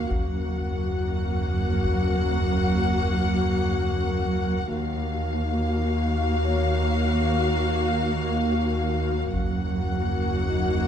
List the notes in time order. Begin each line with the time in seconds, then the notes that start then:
0.09 F#1 D#2 F#2 A#3 F#4 A#4 F#5, taiko
1.83 taiko
4.71 D#2 A#3 F#4 A#4 F5
6.44 C#5
9.32 F#1 D#2 F#2 A#3 F#4 A#4 F#5, taiko
10.49 D#4 D#5